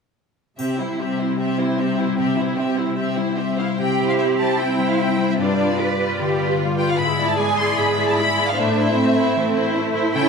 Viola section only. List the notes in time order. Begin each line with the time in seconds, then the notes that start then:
0.59 C4
0.79 E4
1.00 C4
1.20 E4
1.40 C4
1.59 E4
1.79 C4
1.99 E4
2.19 C4
2.39 E4
2.58 C4
2.77 E4
2.97 C4
3.17 E4
3.38 C4
3.59 E4
3.79 C4
4.20 C4
4.60 C4
4.99 C4
5.39 G3
5.79 G3
6.19 G3
6.59 G3
6.99 G#3
7.38 G#3
7.77 G#3
8.16 G#3
8.56 A3
8.95 A3
9.35 A3
9.74 A3
10.14 C#4